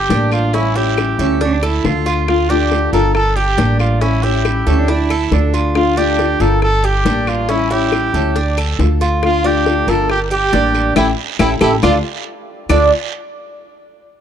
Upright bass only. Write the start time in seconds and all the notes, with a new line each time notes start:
0.09 A1
1.19 D2
1.84 D2
2.93 G1
3.58 A1
4.66 D2
5.31 D2
6.40 G1
7.05 A1
8.14 D2
8.79 D2
9.87 G1
10.53 A1
10.96 A1
11.40 A1
11.61 A1
11.83 D2
12.69 D2